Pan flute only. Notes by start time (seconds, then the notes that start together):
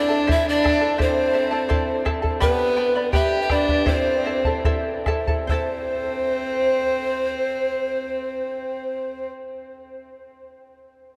Already playing: D5
0.31 E5
0.49 D5
1.01 C5
2.42 B4
3.15 E5
3.42 E5
3.51 D5
3.88 C5
5.49 C5